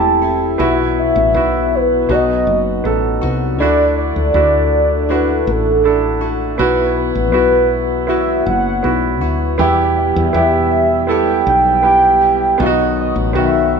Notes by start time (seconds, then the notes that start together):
Already playing: E1 E3 A3 C4 E4 G4 A4 C5 A5
0.22 A3 E4 A4
0.58 B1 B2 E3 F#3 B3 E4 F#4 E5
0.62 F#4
0.99 E5
1.16 A1
1.34 B1 B3 E4 F#4
1.75 B4
2.09 B1 B2 F#3 B3 D#4 F#4 D#5
2.47 F#1
2.84 A1 B3 D#4 A4
3.22 C2 B3 D#4 F#4
3.59 D2 D3 A3 D4 E4 F#4 A4 D5
3.98 D5
4.16 D2
4.34 D2 D4 E4 F#4
5.09 D3 A3 D4 E4 F#4 B4
5.47 A1 A4
5.84 D4 E4 A4
6.21 A3 E4 F#4
6.58 B1 B2 E3 F#3 B3 E4 F#4 B4
6.62 F#4
6.97 B4
7.15 A1
7.32 B1 B3 E4 F#4
8.07 E3 B3 E4 F#4 E5
8.46 F#1 F#5
8.83 B1 B3 E4 F#4
9.21 D2 B3 E4 F#4
9.58 E2 B2 E3 G3 B3 E4 G4 E5
9.98 E5
10.16 E2
10.33 E2 B3 E4 G4
11.07 E3 G3 B3 E4 A4
11.11 G4 G5
11.47 B1 G5
11.83 B3 E4 G4
12.21 E3 G3 E4 G4
12.58 B1 B2 D#3 F#3 B3 D#4 F4
12.62 F#4 D#5
13.01 D#5
13.16 A1
13.33 B1 D#3 B3 F#4
13.38 E5